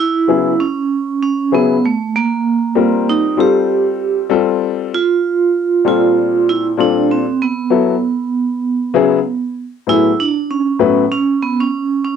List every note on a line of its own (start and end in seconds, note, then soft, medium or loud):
0.00 0.62 E4 medium
0.28 0.51 C#3 medium
0.28 0.52 F#3 medium
0.28 0.52 B3 medium
0.28 0.52 E4 medium
0.28 0.52 G#4 medium
0.60 1.21 C#4 medium
1.23 1.54 C#4 medium
1.52 1.75 C#3 medium
1.52 1.75 F#3 medium
1.52 1.76 B3 medium
1.52 1.85 B3 medium
1.52 1.76 E4 medium
1.52 1.76 G#4 medium
1.85 2.13 A3 medium
2.16 3.11 A#3 medium
2.75 3.36 G3 medium
2.75 3.36 C4 medium
2.75 3.37 F4 medium
2.75 3.64 A#4 medium
3.09 3.37 D#4 medium
3.37 4.25 G3 medium
3.37 4.25 C4 medium
3.37 4.26 F4 medium
3.37 4.28 G4 medium
3.37 4.26 A4 medium
4.30 4.92 G3 medium
4.30 4.92 C4 medium
4.30 4.92 F4 medium
4.30 4.93 A4 medium
4.94 5.87 F4 loud
5.85 6.73 A#2 medium
5.85 6.73 G3 medium
5.85 6.73 C4 medium
5.85 6.73 F4 medium
5.85 6.50 F4 loud
5.85 6.73 A4 medium
6.49 6.63 E4 loud
6.77 7.23 A#2 medium
6.77 7.23 G3 medium
6.77 7.23 C4 medium
6.77 7.11 D4 medium
6.77 7.24 F4 medium
6.77 7.24 A4 medium
7.11 7.42 C4 medium
7.42 9.53 B3 medium
7.70 7.94 F#3 medium
7.70 7.94 B3 medium
7.70 7.94 E4 medium
7.70 7.94 A4 medium
8.94 9.17 C#3 medium
8.94 9.17 F#3 medium
8.94 9.18 B3 medium
8.94 9.18 E4 medium
8.94 9.18 G#4 medium
9.87 10.10 A2 medium
9.87 10.10 F#3 medium
9.87 10.11 B3 soft
9.87 10.11 E4 medium
9.87 10.20 E4 loud
9.87 10.11 G#4 medium
10.20 10.51 D4 medium
10.51 11.10 C#4 medium
10.79 11.03 A2 medium
10.79 11.03 F#3 medium
10.79 11.03 B3 medium
10.79 11.03 E4 medium
10.79 11.03 B4 medium
11.12 11.43 C#4 loud
11.42 11.61 B3 medium
11.60 12.03 C#4 medium
12.04 12.16 C#4 medium